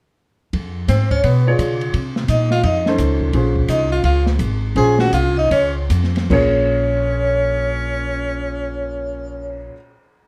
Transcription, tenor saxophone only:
0.89 1.10 C4 medium
1.11 1.23 C#4 medium
1.24 1.45 B3 medium
2.30 2.50 D#4 medium
2.52 2.63 F4 medium
2.64 2.85 D#4 medium
3.69 3.90 D#4 medium
3.92 4.03 F4 medium
4.05 4.26 F4 medium
4.77 4.98 G#4 medium
5.00 5.12 F#4 medium
5.14 5.36 F4 medium
5.38 5.51 D#4 medium
5.52 5.74 C#4 medium
6.31 9.68 C#4 medium

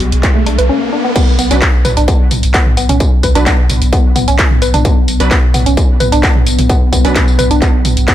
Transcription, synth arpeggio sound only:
0.35 0.39 A3 medium
0.46 0.57 D4 medium
0.58 0.62 B4 medium
0.69 0.80 C#4 medium
0.93 0.99 D4 medium
1.04 1.08 B3 medium
1.15 1.22 B3 loud
1.39 1.43 B3 medium
1.51 1.57 C#4 medium
1.85 1.92 B4 loud
1.97 2.06 D4 loud
2.08 2.18 B3 medium
2.54 2.61 B3 loud
2.77 2.81 B3 medium
2.89 2.95 C#4 medium
3.23 3.30 B4 loud
3.35 3.45 D4 loud
3.46 3.57 B3 medium
3.93 3.99 B3 loud
4.16 4.20 B3 medium
4.28 4.34 C#4 medium
4.62 4.69 B4 loud
4.74 4.83 D4 loud
4.85 4.95 B3 medium
5.31 5.38 B3 loud
5.54 5.58 B3 medium
5.66 5.72 C#4 medium
6.00 6.07 B4 loud
6.12 6.22 D4 loud
6.23 6.33 B3 medium
6.69 6.76 B3 loud
6.92 6.97 B3 medium
7.05 7.11 C#4 medium
7.39 7.45 B4 loud
7.51 7.60 D4 loud
7.62 7.72 B3 medium
8.08 8.15 B3 loud

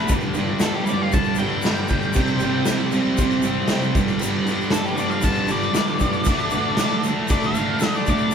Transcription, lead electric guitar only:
0.62 0.74 A4 loud
0.75 0.88 G4 medium
0.85 1.02 D5 loud
1.02 1.14 F5 loud
1.13 1.38 A5 loud
1.39 2.89 G5 medium
4.72 4.85 A4 loud
4.85 4.98 G4 medium
4.96 5.10 D5 loud
5.10 5.24 F5 medium
5.24 5.50 A5 loud
5.52 7.02 D5 loud
7.31 7.44 D5 loud
7.46 7.95 F5 loud
7.96 8.08 D5 loud
8.10 8.34 D5 medium

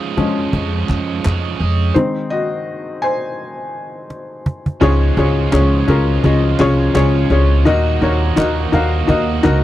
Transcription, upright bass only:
0.18 0.47 F2 medium
0.53 0.83 F2 loud
0.89 1.19 F2 medium
1.25 1.54 F2 medium
1.60 1.90 F2 loud
4.82 5.11 C#2 loud
5.17 5.46 C#2 loud
5.53 5.82 C#2 loud
5.88 6.18 C#2 loud
6.24 6.53 C#2 loud
6.60 6.89 C2 medium
6.95 7.24 C#2 loud
7.30 7.67 C#2 loud
7.67 7.96 D#2 loud
8.02 8.31 D#2 loud
8.37 8.67 D#2 loud
8.73 9.03 D#2 loud
9.09 9.38 D#2 loud
9.45 9.64 C#2 medium

